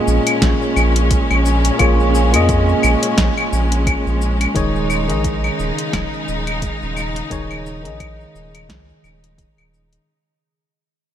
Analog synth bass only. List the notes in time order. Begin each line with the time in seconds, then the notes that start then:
0.08 A#1
0.42 A#1
0.77 A#1
1.31 A#1
1.80 A#1
2.34 F2
2.84 A#1
3.18 A#1
3.53 A#1
4.07 A#1
4.56 D#1
5.10 A#1
5.60 D#1
5.93 D#1
6.28 D#1
6.83 D#1
7.31 D#1
7.86 A#1
8.35 D#1
8.69 C#2
9.04 D#1
9.58 D#1